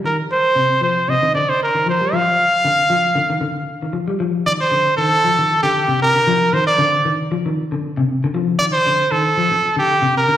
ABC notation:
X:1
M:4/4
L:1/16
Q:"Swing 16ths" 1/4=116
K:Fmix
V:1 name="Trumpet"
B2 c4 c2 e2 d c B2 c2 | f12- f2 z2 | z2 d c3 A4- A G3 B2- | B2 c d4 z8 z |
z2 d c3 A4- A G3 B2 |]
V:2 name="Clean electric guitar" clef=bass
E,2 z2 C,2 F,2 C, E, D,2 z E, F, G, | F,2 z2 D,2 F,2 D, E, D,2 z E, F, G, | F,2 E,2 D,2 E,2 F, E,2 D,2 C,2 D, | F,2 E,2 D,2 E,2 F, E,2 D,2 C,2 D, |
F,2 E,2 D,2 E,2 F, z2 D,2 C,2 D, |]